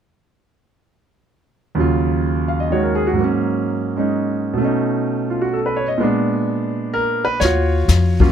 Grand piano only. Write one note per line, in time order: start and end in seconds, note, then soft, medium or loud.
1.75 3.17 D#2 soft
1.75 3.18 C#3 soft
1.75 3.15 F#3 soft
1.80 3.20 F4 soft
2.48 2.62 F5 soft
2.60 2.76 D#5 soft
2.70 3.18 D#3 soft
2.70 3.19 G#3 soft
2.70 3.06 F#4 soft
2.70 2.94 C#5 soft
2.83 3.03 A#4 soft
2.95 3.10 G#4 soft
3.07 3.23 F#4 soft
3.13 4.57 G#2 soft
3.13 4.59 F#3 soft
3.21 4.60 A#3 soft
3.21 3.96 C#4 soft
3.97 4.59 G#3 soft
3.97 4.60 C#4 soft
3.97 4.60 D#4 soft
4.54 5.98 B2 soft
4.54 5.99 A3 soft
4.61 6.01 C#4 soft
4.61 6.03 D#4 soft
5.30 5.45 F4 soft
5.42 5.58 F#4 soft
5.53 5.76 A4 soft
5.66 5.86 B4 soft
5.76 5.91 C#5 soft
5.88 6.05 D#5 soft
5.98 7.40 A#2 soft
5.98 7.41 G#3 soft
5.98 7.42 B3 soft
6.03 7.43 D4 medium
6.94 7.24 A#4 medium
7.25 7.39 B4 medium
7.40 8.15 C#5 medium
7.44 8.18 F4 medium
7.44 8.18 F#4 medium
8.20 8.32 F#3 medium
8.20 8.32 A#3 medium
8.20 8.32 C#4 medium
8.20 8.32 F4 medium